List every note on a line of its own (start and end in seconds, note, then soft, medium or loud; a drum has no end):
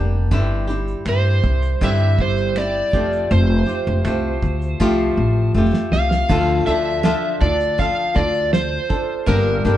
0.00 0.31 F1 medium
0.00 0.31 D3 medium
0.00 0.31 G3 soft
0.00 0.31 A#3 soft
0.00 0.32 D4 soft
0.00 0.31 G4 soft
0.31 0.93 G1 loud
0.31 0.69 G2 medium
0.31 0.69 D3 medium
0.31 0.69 G3 medium
0.31 0.69 C4 medium
0.31 0.68 E4 medium
0.31 0.66 G4 medium
0.31 kick loud
0.31 shaker medium
0.67 1.04 G3 soft
0.67 1.05 C4 soft
0.67 1.07 E4 medium
0.67 1.06 G4 medium
0.67 shaker medium
0.88 shaker soft
1.05 1.37 G2 medium
1.05 1.82 G3 medium
1.05 1.82 C4 medium
1.05 1.81 E4 medium
1.05 1.83 G4 medium
1.05 1.85 C5 medium
1.05 finger snap loud
1.05 shaker medium
1.43 1.74 C2 medium
1.43 kick medium
1.43 shaker medium
1.62 finger snap soft
1.62 shaker medium
1.81 2.56 G2 medium
1.81 2.12 G2 medium
1.81 2.56 D3 medium
1.81 2.55 G3 medium
1.81 2.57 C4 medium
1.81 2.57 E4 medium
1.81 2.59 G4 medium
1.81 2.21 E5 loud
1.81 kick medium
1.81 shaker medium
2.18 2.80 G1 medium
2.18 2.59 C5 medium
2.18 kick medium
2.18 shaker soft
2.36 shaker soft
2.56 2.93 G3 medium
2.56 2.93 C4 medium
2.56 2.94 E4 medium
2.56 2.92 G4 medium
2.56 3.34 D5 medium
2.56 finger snap medium
2.56 shaker medium
2.93 3.24 F1 medium
2.93 4.10 F3 medium
2.93 4.04 A3 medium
2.93 3.68 C4 medium
2.93 3.68 F4 medium
2.93 3.65 G4 medium
2.93 kick medium
2.93 shaker soft
3.13 shaker soft
3.31 3.61 F1 loud
3.31 5.51 C5 medium
3.31 shaker medium
3.66 4.05 C4 soft
3.66 4.06 F4 medium
3.66 4.05 G4 soft
3.66 shaker medium
3.87 4.02 F1 loud
4.04 4.36 C2 medium
4.04 4.79 A3 medium
4.04 4.79 C4 medium
4.04 4.80 F4 medium
4.04 4.80 G4 medium
4.04 finger snap loud
4.04 shaker medium
4.42 4.73 D2 medium
4.42 kick medium
4.42 shaker soft
4.62 shaker soft
4.80 5.11 C2 medium
4.80 5.61 F3 medium
4.80 5.54 A3 medium
4.80 5.54 C4 medium
4.80 5.56 F4 medium
4.80 5.55 G4 medium
4.80 kick medium
5.17 5.48 A1 medium
5.54 5.70 F1 medium
5.54 6.29 A3 medium
5.54 6.29 C4 medium
5.54 6.30 F4 medium
5.54 6.31 G4 medium
5.73 snare medium
5.91 6.22 C2 medium
5.91 6.66 F5 loud
5.91 snare medium
6.11 snare medium
6.29 6.60 D2 loud
6.29 6.66 D3 medium
6.29 6.67 F3 medium
6.29 6.66 D4 medium
6.29 6.66 F4 medium
6.29 6.65 A4 medium
6.29 kick loud
6.29 crash medium
6.66 7.13 D2 medium
6.66 7.02 D3 medium
6.66 7.02 F3 medium
6.66 7.03 D4 medium
6.66 7.04 F4 medium
6.66 7.04 A4 medium
6.66 7.37 E5 loud
6.66 shaker medium
7.03 7.41 D3 medium
7.03 7.41 F3 medium
7.03 7.41 D4 medium
7.03 7.41 F4 medium
7.03 7.39 A4 medium
7.03 snare loud
7.03 shaker medium
7.41 7.87 D2 loud
7.41 7.78 D4 soft
7.41 7.79 F4 soft
7.41 7.78 A4 medium
7.41 7.80 D5 medium
7.41 kick medium
7.41 shaker soft
7.60 shaker medium
7.78 8.15 F3 medium
7.78 8.16 D4 medium
7.78 8.15 F4 medium
7.78 8.13 A4 medium
7.78 8.17 F5 loud
7.78 kick medium
7.78 shaker medium
8.15 8.77 D2 medium
8.15 8.92 D4 soft
8.15 8.89 F4 medium
8.15 8.88 A4 medium
8.15 8.53 D5 medium
8.15 kick medium
8.15 shaker medium
8.34 shaker soft
8.53 9.30 C5 medium
8.53 snare loud
8.53 shaker medium
8.89 9.27 D4 soft
8.89 9.27 F4 soft
8.89 9.27 A4 medium
8.89 kick medium
8.89 shaker medium
9.26 9.58 G1 loud
9.26 9.64 G2 medium
9.26 9.64 D3 medium
9.26 9.65 G3 medium
9.26 9.65 A#3 medium
9.26 9.64 D4 medium
9.26 9.64 G4 medium
9.26 9.77 A#4 medium
9.26 kick loud
9.26 shaker medium
9.65 9.77 G1 loud
9.65 9.77 G2 medium
9.65 9.77 D3 medium
9.65 9.77 G3 medium
9.65 9.77 A#3 medium
9.65 9.77 D4 medium
9.65 9.77 G4 medium
9.65 shaker medium